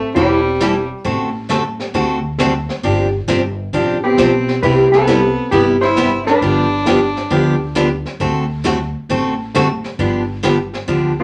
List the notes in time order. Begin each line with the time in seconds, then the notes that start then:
Already playing: A3 C4 A4
0.15 E1 E3 G3 C4 E4 G4 A4, brush sweep, kick
0.60 E3 G3 C4 E4 A4, snare, hi-hat pedal
1.04 A1 D3 A3 C4 F#4 A4, brush sweep, kick
1.49 D3 A3 C4 F#4 A4, snare, hi-hat pedal
1.80 snare
1.94 D2 D3 A3 C4 F#4 A4, brush sweep, kick
2.38 D3 A3 C4 F#4 A4, snare, hi-hat pedal
2.69 snare
2.83 G1 C3 F3 C4 D4 G4, brush sweep, kick
3.28 G1 C3 F3 C4 D4 G4, snare, hi-hat pedal
3.73 A1 C3 F3 C4 D4 G4, brush sweep, kick
4.03 B3 C4 G4
4.17 B1 C3 F3 C4 D4 G4, snare, hi-hat pedal
4.48 snare
4.62 C2 C3 G3 B3 C4 E4 G4 B4, brush sweep, kick
4.92 B3 C4 A4, snare
5.07 C3 G3 B3 E4 G4, snare, hi-hat pedal
5.51 G1 C3 G3 B3 E4 G4, brush sweep, kick
5.81 E4 C5, snare
5.96 C3 G3 B3 E4 G4, snare, hi-hat pedal
6.26 D4 B4, snare
6.41 G1 D3 F3 B3 D4 G4, brush sweep, kick
6.86 D3 F3 B3 D4 G4, snare, hi-hat pedal
7.16 snare
7.30 D2 D3 F3 B3 D4 G4, brush sweep, kick
7.75 D3 F3 B3 D4 G4, snare, hi-hat pedal
8.06 snare
8.20 D2 D3 A3 C4 F#4 A4, brush sweep, kick
8.64 D3 A3 C4 F#4 A4, snare, hi-hat pedal
9.09 A1 D3 A3 C4 F#4 A4, brush sweep, kick
9.55 D3 A3 C4 F#4 A4, snare, hi-hat pedal
9.84 snare
9.99 G1 D3 F3 B3 D4 G4, brush sweep, kick
10.43 D3 F3 B3 D4 G4, snare, hi-hat pedal
10.73 snare
10.88 D2 D3 F3 B3 D4 G4, brush sweep, kick
11.20 A3 B3